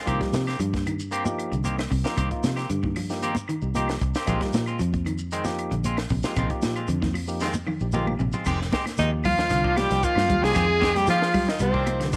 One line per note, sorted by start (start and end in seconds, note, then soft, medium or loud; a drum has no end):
0.06 0.20 C2 medium
0.06 0.21 D#3 medium
0.06 0.45 F3 medium
0.06 0.45 A#3 medium
0.06 0.21 A#3 medium
0.06 0.20 C4 medium
0.06 0.45 D#4 medium
0.06 0.45 G4 medium
0.06 0.20 G4 medium
0.06 muted clean electric guitar stroke medium
0.06 kick medium
0.06 closed hi-hat medium
0.06 high conga soft
0.06 claves medium
0.06 shekere medium
0.21 0.35 G3 medium
0.21 muted clean electric guitar stroke soft
0.21 kick medium
0.21 snare soft
0.21 closed hi-hat soft
0.33 0.57 C3 medium
0.33 muted clean electric guitar stroke soft
0.33 snare medium
0.33 closed hi-hat soft
0.33 high conga medium
0.33 shekere medium
0.47 0.59 A#3 soft
0.47 0.59 C4 medium
0.47 0.59 G4 medium
0.47 snare soft
0.47 closed hi-hat soft
0.47 claves medium
0.47 shekere soft
0.59 1.48 G2 medium
0.59 0.74 F3 medium
0.59 muted clean electric guitar stroke soft
0.59 closed hi-hat medium
0.59 high conga soft
0.59 shekere medium
0.73 muted clean electric guitar stroke soft
0.73 kick medium
0.73 snare soft
0.73 closed hi-hat soft
0.73 high conga medium
0.86 1.01 D#3 medium
0.86 closed hi-hat soft
0.86 claves medium
0.86 shekere soft
1.00 shekere medium
1.11 1.25 A#3 medium
1.11 1.26 C4 medium
1.11 1.24 G4 medium
1.11 muted clean electric guitar stroke medium
1.11 closed hi-hat medium
1.11 high conga soft
1.11 shekere medium
1.25 1.54 F3 medium
1.25 1.54 A#3 medium
1.25 1.54 D#4 medium
1.25 1.54 G4 medium
1.25 muted clean electric guitar stroke soft
1.25 high conga medium
1.25 shekere medium
1.38 muted clean electric guitar stroke soft
1.38 closed hi-hat soft
1.38 claves medium
1.52 1.88 C2 medium
1.52 1.66 D3 medium
1.52 closed hi-hat soft
1.52 shekere soft
1.64 1.78 D#3 medium
1.64 1.77 A#3 medium
1.64 1.76 C4 medium
1.64 1.76 G4 medium
1.64 closed hi-hat medium
1.64 high conga medium
1.64 shekere medium
1.77 muted clean electric guitar stroke soft
1.77 snare medium
1.77 closed hi-hat soft
1.77 high conga medium
1.77 claves medium
1.90 2.04 C2 medium
1.90 2.05 C3 medium
1.90 muted clean electric guitar stroke soft
1.90 kick medium
1.90 open hi-hat medium
1.90 shekere soft
2.04 2.14 F3 medium
2.04 2.14 A#3 medium
2.04 2.17 A#3 soft
2.04 2.17 C4 soft
2.04 2.14 D#4 medium
2.04 2.17 G4 medium
2.04 2.14 A#4 medium
2.04 snare medium
2.04 closed hi-hat soft
2.04 shekere medium
2.17 2.30 C2 medium
2.17 2.31 C3 medium
2.17 2.31 D#3 medium
2.17 2.30 A#3 medium
2.17 2.30 C4 medium
2.17 2.29 G4 medium
2.17 kick medium
2.17 closed hi-hat medium
2.17 claves medium
2.17 shekere medium
2.30 2.59 F3 medium
2.30 2.60 A#3 medium
2.30 2.59 D#4 medium
2.30 2.60 F4 medium
2.30 muted clean electric guitar stroke soft
2.30 kick medium
2.30 closed hi-hat soft
2.43 2.68 C3 medium
2.43 muted clean electric guitar stroke soft
2.43 snare medium
2.43 closed hi-hat soft
2.43 high conga medium
2.43 shekere medium
2.56 2.69 A#3 soft
2.56 2.69 C4 medium
2.56 2.69 G4 medium
2.56 snare soft
2.56 closed hi-hat soft
2.56 claves medium
2.56 shekere soft
2.70 3.58 G2 medium
2.70 2.77 D3 medium
2.70 muted clean electric guitar stroke soft
2.70 closed hi-hat medium
2.70 high conga soft
2.70 shekere medium
2.83 2.91 D#3 medium
2.83 muted clean electric guitar stroke soft
2.83 kick medium
2.83 high conga medium
2.96 3.11 F3 medium
2.96 open hi-hat medium
2.96 claves medium
2.96 shekere soft
3.10 3.28 F3 medium
3.10 3.28 A#3 medium
3.10 3.28 D#4 medium
3.10 3.29 G4 medium
3.10 snare soft
3.10 shekere medium
3.22 3.36 D#3 medium
3.22 3.36 A#3 loud
3.22 3.36 C4 medium
3.22 3.35 G4 medium
3.22 closed hi-hat medium
3.22 high conga soft
3.22 shekere medium
3.35 muted clean electric guitar stroke soft
3.35 closed hi-hat soft
3.35 high conga loud
3.35 shekere medium
3.48 3.63 D#3 medium
3.48 muted clean electric guitar stroke soft
3.48 closed hi-hat soft
3.48 claves medium
3.62 3.98 C2 medium
3.62 3.66 D#4 medium
3.62 3.67 G4 medium
3.62 shekere soft
3.75 3.88 D#3 medium
3.75 3.94 F3 medium
3.75 3.94 A#3 medium
3.75 3.89 A#3 medium
3.75 3.89 C4 medium
3.75 3.94 D#4 medium
3.75 3.94 G4 loud
3.75 3.89 G4 medium
3.75 closed hi-hat medium
3.75 high conga medium
3.75 shekere medium
3.88 muted clean electric guitar stroke soft
3.88 snare medium
3.88 closed hi-hat soft
3.88 claves medium
4.01 4.14 C2 medium
4.01 muted clean electric guitar stroke soft
4.01 kick medium
4.01 closed hi-hat soft
4.01 shekere soft
4.15 4.28 A#3 soft
4.15 4.27 C4 medium
4.15 4.28 G4 medium
4.15 snare medium
4.15 closed hi-hat soft
4.15 shekere medium
4.26 4.40 A#1 loud
4.26 4.41 D#3 medium
4.26 4.65 F3 medium
4.26 4.35 F3 medium
4.26 4.41 G#3 medium
4.26 4.65 A#3 medium
4.26 4.41 C4 medium
4.26 4.65 D#4 medium
4.26 4.41 F4 medium
4.26 4.66 G4 medium
4.26 kick medium
4.26 closed hi-hat medium
4.26 high conga soft
4.26 claves medium
4.26 shekere medium
4.41 4.55 G3 medium
4.41 muted clean electric guitar stroke soft
4.41 kick medium
4.41 snare soft
4.41 closed hi-hat soft
4.53 4.78 A#2 medium
4.53 muted clean electric guitar stroke soft
4.53 snare medium
4.53 closed hi-hat soft
4.53 high conga loud
4.53 shekere medium
4.66 4.79 G#3 soft
4.66 4.79 C4 medium
4.66 4.80 F4 medium
4.66 closed hi-hat soft
4.66 claves medium
4.66 shekere soft
4.79 5.68 F2 loud
4.79 4.94 F3 medium
4.79 muted clean electric guitar stroke soft
4.79 closed hi-hat medium
4.79 shekere medium
4.93 muted clean electric guitar stroke soft
4.93 kick medium
4.93 closed hi-hat soft
4.93 high conga medium
5.06 5.21 D#3 medium
5.06 closed hi-hat soft
5.06 claves medium
5.06 shekere soft
5.18 shekere medium
5.32 5.45 D#3 medium
5.32 5.45 G#3 medium
5.32 5.45 C4 loud
5.32 muted clean electric guitar stroke medium
5.32 closed hi-hat medium
5.32 high conga soft
5.32 shekere medium
5.44 5.73 F3 medium
5.44 5.73 A#3 medium
5.44 5.74 D#4 medium
5.44 5.74 G4 loud
5.44 muted clean electric guitar stroke soft
5.44 snare soft
5.44 high conga medium
5.44 shekere medium
5.59 muted clean electric guitar stroke soft
5.59 closed hi-hat soft
5.59 claves medium
5.71 6.08 A#1 medium
5.71 5.86 D3 medium
5.71 closed hi-hat soft
5.71 shekere soft
5.84 5.98 G#3 medium
5.84 5.98 C4 medium
5.84 5.98 F4 medium
5.84 closed hi-hat medium
5.84 high conga medium
5.84 shekere medium
5.97 muted clean electric guitar stroke soft
5.97 snare medium
5.97 closed hi-hat soft
5.97 claves medium
6.09 6.23 A#1 medium
6.09 6.25 C3 medium
6.09 muted clean electric guitar stroke soft
6.09 kick medium
6.09 open hi-hat medium
6.09 shekere soft
6.23 6.33 F3 medium
6.23 6.37 G#3 soft
6.23 6.33 A#3 medium
6.23 6.37 C4 soft
6.23 6.33 D#4 medium
6.23 6.37 F4 medium
6.23 6.33 G4 medium
6.23 snare medium
6.23 closed hi-hat soft
6.23 shekere medium
6.36 6.49 A#1 medium
6.36 6.51 C3 medium
6.36 6.51 D#3 medium
6.36 6.50 G#3 medium
6.36 6.50 C4 medium
6.36 6.49 F4 medium
6.36 kick medium
6.36 closed hi-hat medium
6.36 high conga soft
6.36 claves medium
6.36 shekere medium
6.50 6.79 F3 medium
6.50 6.79 A#3 medium
6.50 6.79 D#4 medium
6.50 6.79 G4 medium
6.50 muted clean electric guitar stroke soft
6.50 kick medium
6.50 closed hi-hat soft
6.62 6.87 A#2 medium
6.62 muted clean electric guitar stroke soft
6.62 snare medium
6.62 closed hi-hat soft
6.62 high conga loud
6.62 shekere medium
6.75 6.89 G#3 soft
6.75 6.89 C4 medium
6.75 6.89 F4 medium
6.75 closed hi-hat soft
6.75 claves medium
6.75 shekere soft
6.88 7.77 F2 loud
6.88 6.96 D3 medium
6.88 muted clean electric guitar stroke soft
6.88 closed hi-hat medium
6.88 high conga soft
6.88 shekere medium
7.02 7.09 D#3 medium
7.02 muted clean electric guitar stroke soft
7.02 kick medium
7.02 snare soft
7.02 high conga medium
7.14 7.29 F3 medium
7.14 open hi-hat medium
7.14 claves medium
7.14 shekere soft
7.28 7.47 F3 medium
7.28 7.47 A#3 medium
7.28 7.47 D#4 medium
7.28 7.47 G4 medium
7.28 shekere medium
7.40 7.55 D#3 medium
7.40 7.54 G#3 medium
7.40 7.54 C4 medium
7.40 7.54 F4 medium
7.40 snare soft
7.40 shekere medium
7.53 muted clean electric guitar stroke soft
7.53 high conga medium
7.53 shekere medium
7.67 7.82 D#3 medium
7.67 muted clean electric guitar stroke soft
7.67 high tom medium
7.67 claves medium
7.80 8.17 A#1 medium
7.80 7.86 D#4 medium
7.80 7.86 G4 loud
7.80 shekere soft
7.92 8.07 D#3 medium
7.92 8.13 F3 medium
7.92 8.07 G#3 medium
7.92 8.13 A#3 medium
7.92 8.07 C4 medium
7.92 8.13 D#4 medium
7.92 8.06 F4 medium
7.92 8.13 G4 loud
7.92 mid tom medium
7.92 high conga medium
7.92 shekere medium
8.07 muted clean electric guitar stroke soft
8.07 mid tom medium
8.07 high conga medium
8.07 claves medium
8.19 8.32 A#1 loud
8.19 8.34 C3 medium
8.19 muted clean electric guitar stroke soft
8.19 floor tom medium
8.19 shekere soft
8.32 8.45 G#3 soft
8.32 8.46 C4 medium
8.32 8.46 F4 medium
8.32 floor tom medium
8.32 shekere medium
8.45 8.71 F1 loud
8.45 8.61 C3 medium
8.45 8.60 D#3 medium
8.45 8.60 G#3 medium
8.45 8.60 C4 medium
8.45 8.59 G4 medium
8.45 kick medium
8.45 crash medium
8.45 claves medium
8.45 shekere medium
8.60 muted clean electric guitar stroke soft
8.60 snare soft
8.72 8.86 G#3 medium
8.72 8.86 C4 medium
8.72 8.85 G4 medium
8.72 muted clean electric guitar stroke medium
8.72 kick medium
8.72 snare medium
8.72 closed hi-hat soft
8.72 high conga loud
8.72 shekere soft
8.86 muted clean electric guitar stroke soft
8.86 snare soft
8.86 closed hi-hat soft
8.86 high conga medium
8.86 claves medium
8.97 9.47 D#2 loud
8.97 9.10 D#3 medium
8.97 9.12 D#3 medium
8.97 9.27 F3 medium
8.97 9.12 G#3 medium
8.97 9.27 A#3 medium
8.97 9.12 C4 medium
8.97 9.27 D#4 medium
8.97 9.11 D#4 medium
8.97 9.27 G4 medium
8.97 9.11 D#5 medium
8.97 muted clean electric guitar stroke medium
8.97 closed hi-hat medium
8.97 high conga medium
8.97 shekere medium
9.13 muted clean electric guitar stroke soft
9.24 9.39 F3 medium
9.24 9.79 F3 medium
9.24 9.78 F4 loud
9.24 9.80 F5 medium
9.24 kick medium
9.24 open hi-hat medium
9.24 low conga loud
9.24 claves medium
9.24 shekere soft
9.38 muted clean electric guitar stroke soft
9.38 snare medium
9.38 closed hi-hat medium
9.50 9.88 C2 loud
9.50 9.65 D3 medium
9.50 muted clean electric guitar stroke soft
9.50 snare soft
9.50 closed hi-hat medium
9.50 shekere medium
9.64 9.75 D#3 medium
9.64 9.77 A#3 medium
9.64 9.76 D4 medium
9.64 9.76 F4 medium
9.64 kick medium
9.76 10.01 F3 medium
9.76 10.05 G3 medium
9.76 10.01 A#3 medium
9.76 10.01 D#4 medium
9.76 10.05 G4 loud
9.76 10.01 G4 medium
9.76 10.06 G5 medium
9.76 muted clean electric guitar stroke soft
9.76 snare soft
9.76 closed hi-hat medium
9.76 high conga loud
9.76 claves medium
9.76 shekere soft
9.90 10.03 C2 medium
9.90 10.05 F3 medium
9.90 snare soft
9.90 closed hi-hat medium
10.03 10.17 D#3 medium
10.03 10.45 F3 medium
10.03 10.16 A#3 medium
10.03 10.45 F4 medium
10.03 10.15 F4 medium
10.03 10.44 F5 medium
10.03 kick medium
10.03 closed hi-hat medium
10.03 shekere medium
10.15 10.30 G2 medium
10.15 muted clean electric guitar stroke soft
10.15 snare medium
10.15 high conga medium
10.15 claves medium
10.29 10.42 D#2 medium
10.29 10.44 G3 medium
10.29 muted clean electric guitar stroke soft
10.29 kick medium
10.29 closed hi-hat medium
10.29 low conga medium
10.29 shekere soft
10.42 10.55 C2 medium
10.42 10.55 F3 medium
10.42 10.98 G#3 medium
10.42 10.55 A#3 medium
10.42 10.54 A#3 soft
10.42 10.54 D4 soft
10.42 10.56 D#4 medium
10.42 10.55 F4 medium
10.42 10.56 G4 medium
10.42 10.98 G#4 loud
10.42 10.96 G#5 medium
10.42 snare medium
10.42 high conga medium
10.54 11.05 F2 medium
10.54 10.68 D#3 medium
10.54 10.70 F3 medium
10.54 10.67 G#3 medium
10.54 10.67 C4 medium
10.54 10.67 G4 medium
10.54 kick medium
10.54 snare soft
10.54 closed hi-hat medium
10.54 claves medium
10.54 shekere medium
10.68 muted clean electric guitar stroke soft
10.80 10.94 D#3 medium
10.80 10.93 G#3 medium
10.80 10.92 C4 medium
10.80 10.92 G4 medium
10.80 kick medium
10.80 snare medium
10.80 closed hi-hat medium
10.80 high conga loud
10.80 shekere soft
10.93 11.09 G3 medium
10.93 11.08 G3 medium
10.93 11.09 G4 medium
10.93 11.08 G5 medium
10.93 muted clean electric guitar stroke soft
10.93 snare soft
10.93 closed hi-hat medium
10.93 high conga medium
10.93 claves medium
11.05 11.20 D#3 medium
11.05 11.36 F3 medium
11.05 11.32 F3 loud
11.05 11.49 F3 medium
11.05 11.36 A#3 medium
11.05 11.19 C4 medium
11.05 11.37 D#4 medium
11.05 11.19 G4 medium
11.05 11.36 G#4 medium
11.05 11.50 F5 medium
11.05 muted clean electric guitar stroke medium
11.05 snare soft
11.05 closed hi-hat medium
11.05 high conga medium
11.05 shekere medium
11.10 11.51 F4 loud
11.20 muted clean electric guitar stroke soft
11.20 snare medium
11.34 11.49 G3 medium
11.34 kick medium
11.34 open hi-hat medium
11.34 low conga medium
11.34 claves medium
11.34 shekere soft
11.47 11.60 D#3 medium
11.47 11.61 D#4 medium
11.47 11.61 D#5 medium
11.47 muted clean electric guitar stroke soft
11.47 snare medium
11.59 12.17 C2 loud
11.59 12.09 C3 medium
11.59 11.75 G3 medium
11.59 12.10 C4 medium
11.59 12.10 C5 medium
11.59 muted clean electric guitar stroke soft
11.59 closed hi-hat medium
11.59 shekere medium
11.72 11.85 D#3 medium
11.72 11.85 A#3 medium
11.72 11.85 D4 medium
11.72 11.85 F4 medium
11.72 kick medium
11.86 12.10 F3 medium
11.86 12.11 A#3 medium
11.86 12.11 D#4 medium
11.86 12.11 G4 medium
11.86 muted clean electric guitar stroke soft
11.86 closed hi-hat medium
11.86 high conga loud
11.86 claves medium
11.86 shekere soft
12.00 12.15 D3 medium
12.00 snare soft
12.00 closed hi-hat medium
12.13 12.17 D#3 medium
12.13 12.17 A#3 medium
12.13 12.17 D4 medium
12.13 kick medium
12.13 closed hi-hat medium
12.13 shekere medium